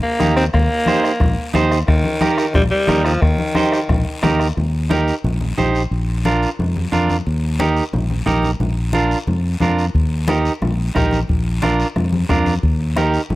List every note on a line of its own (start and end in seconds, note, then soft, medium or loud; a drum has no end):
0.03 0.35 A#3 loud
0.20 0.48 D#2 medium
0.20 0.44 D#4 medium
0.20 0.44 G4 medium
0.20 0.44 A#4 medium
0.20 bombo rim medium
0.20 high conga medium
0.20 short guiro medium
0.36 0.44 C4 loud
0.36 bombo rim medium
0.36 short guiro medium
0.54 0.68 D#2 loud
0.54 1.51 A#3 loud
0.54 bombo low medium
0.54 bombo rim loud
0.54 low conga medium
0.54 long guiro medium
0.86 1.11 D#4 medium
0.86 1.11 G4 medium
0.86 1.11 C5 medium
0.86 bombo rim medium
0.86 high conga medium
0.86 short guiro medium
1.04 bombo rim medium
1.04 short guiro medium
1.20 1.35 A#1 loud
1.20 bombo low medium
1.20 bombo rim medium
1.20 low conga medium
1.20 long guiro medium
1.54 1.82 D#2 medium
1.54 1.78 D#4 medium
1.54 1.78 G4 medium
1.54 1.78 C5 loud
1.54 bombo rim medium
1.54 high conga medium
1.54 short guiro medium
1.72 bombo rim medium
1.72 short guiro medium
1.87 2.02 D#2 loud
1.87 2.51 D#3 loud
1.87 bombo low loud
1.87 bombo rim loud
1.87 long guiro medium
2.04 high conga medium
2.21 2.45 D#4 medium
2.21 2.45 G4 medium
2.21 2.45 A#4 medium
2.21 bombo rim medium
2.21 high conga medium
2.21 short guiro medium
2.38 bombo rim medium
2.38 short guiro medium
2.54 2.69 A#1 loud
2.54 2.63 G3 loud
2.54 bombo low medium
2.54 bombo rim medium
2.54 low conga medium
2.54 long guiro medium
2.71 3.03 G3 loud
2.87 3.16 D#2 medium
2.87 3.12 D#4 medium
2.87 3.12 G4 medium
2.87 3.12 A#4 medium
2.87 bombo rim medium
2.87 high conga medium
2.87 short guiro medium
3.05 3.22 F3 loud
3.05 bombo rim medium
3.05 short guiro medium
3.21 3.36 D#2 loud
3.21 4.22 D#3 medium
3.21 bombo low medium
3.21 bombo rim medium
3.21 long guiro medium
3.38 high conga medium
3.55 3.79 D#4 medium
3.55 3.79 G4 medium
3.55 3.79 C5 medium
3.55 bombo rim medium
3.55 high conga medium
3.55 short guiro medium
3.72 bombo rim medium
3.72 short guiro medium
3.89 4.03 A#1 loud
3.89 bombo low medium
3.89 bombo rim medium
3.89 low conga medium
3.89 long guiro medium
4.23 4.50 D#2 medium
4.23 4.47 D#4 medium
4.23 4.47 G4 medium
4.23 4.47 A#4 medium
4.23 bombo rim medium
4.23 high conga medium
4.23 low conga medium
4.23 short guiro medium
4.40 bombo rim medium
4.40 short guiro medium
4.57 5.11 D#2 loud
4.57 high conga soft
4.57 low conga medium
4.57 long guiro medium
4.90 5.14 D#4 medium
4.90 5.14 G4 medium
4.90 5.14 A#4 medium
4.90 high conga medium
4.90 short guiro medium
5.08 short guiro medium
5.24 5.51 A#1 medium
5.24 high conga soft
5.24 low conga medium
5.24 long guiro medium
5.41 high conga medium
5.58 5.85 A#1 medium
5.58 5.81 D#4 medium
5.58 5.81 G4 medium
5.58 5.82 C5 medium
5.58 high conga medium
5.58 low conga medium
5.58 short guiro medium
5.75 short guiro medium
5.91 6.45 A#1 loud
5.91 high conga soft
5.91 long guiro medium
6.25 6.49 D4 medium
6.25 6.49 F4 medium
6.25 6.49 A#4 medium
6.25 high conga medium
6.25 short guiro medium
6.43 short guiro medium
6.59 6.86 F2 medium
6.59 high conga soft
6.59 low conga medium
6.59 long guiro medium
6.76 high conga medium
6.92 7.19 F2 medium
6.92 7.16 D4 medium
6.92 7.16 F4 medium
6.92 7.16 A#4 medium
6.92 high conga medium
6.92 short guiro medium
7.09 high conga medium
7.09 short guiro medium
7.27 7.80 D#2 loud
7.27 high conga soft
7.27 long guiro medium
7.60 7.83 D#4 medium
7.60 7.83 G4 medium
7.60 7.83 A#4 medium
7.60 high conga medium
7.60 short guiro medium
7.77 short guiro medium
7.93 8.20 A#1 medium
7.93 high conga soft
7.93 low conga medium
7.93 long guiro medium
8.10 high conga medium
8.26 8.54 A#1 medium
8.26 8.50 D#4 medium
8.26 8.50 G4 medium
8.26 8.50 A#4 medium
8.26 high conga medium
8.26 low conga medium
8.26 short guiro medium
8.43 high conga medium
8.43 short guiro medium
8.60 9.14 A#1 medium
8.60 high conga soft
8.60 low conga medium
8.60 long guiro medium
8.93 9.17 D4 medium
8.93 9.18 F4 medium
8.93 9.18 A#4 medium
8.93 high conga medium
8.93 short guiro medium
9.11 short guiro medium
9.27 9.54 F2 medium
9.27 high conga soft
9.27 low conga medium
9.27 long guiro medium
9.60 9.88 F2 medium
9.60 9.85 D4 medium
9.60 9.85 F4 medium
9.60 9.85 A#4 medium
9.60 high conga medium
9.60 low conga medium
9.60 short guiro medium
9.79 short guiro medium
9.94 10.48 D#2 loud
9.94 bombo low medium
9.94 high conga soft
9.94 long guiro medium
10.28 10.52 D#4 medium
10.28 10.52 G4 medium
10.28 10.52 A#4 medium
10.28 bombo rim medium
10.28 high conga medium
10.28 short guiro medium
10.45 short guiro medium
10.62 10.89 A#1 medium
10.62 bombo rim medium
10.62 high conga soft
10.62 low conga medium
10.62 long guiro medium
10.95 11.23 A#1 medium
10.95 11.19 D#4 medium
10.95 11.19 G4 medium
10.95 11.19 A#4 medium
10.95 bombo low medium
10.95 bombo rim medium
10.95 high conga medium
10.95 low conga medium
10.95 short guiro medium
11.11 high conga medium
11.11 short guiro medium
11.28 11.83 A#1 medium
11.28 bombo low medium
11.28 high conga soft
11.28 long guiro medium
11.62 11.86 D4 medium
11.62 11.86 F4 medium
11.62 11.86 A#4 medium
11.62 bombo rim medium
11.62 high conga medium
11.62 short guiro medium
11.80 short guiro medium
11.96 12.23 F2 medium
11.96 bombo rim medium
11.96 high conga soft
11.96 low conga medium
11.96 long guiro medium
12.12 high conga medium
12.29 12.57 F2 medium
12.29 12.53 D4 medium
12.29 12.53 F4 medium
12.29 12.54 A#4 medium
12.29 bombo low medium
12.29 bombo rim medium
12.29 high conga medium
12.29 low conga medium
12.29 short guiro medium
12.46 high conga medium
12.46 short guiro medium
12.63 13.17 D#2 medium
12.63 bombo low medium
12.63 high conga soft
12.63 long guiro medium
12.96 13.20 D#4 medium
12.96 13.20 G4 medium
12.96 13.21 A#4 loud
12.96 bombo rim medium
12.96 high conga medium
12.96 short guiro medium
13.14 short guiro medium
13.30 13.35 A#1 medium
13.30 high conga soft
13.30 low conga medium
13.30 long guiro medium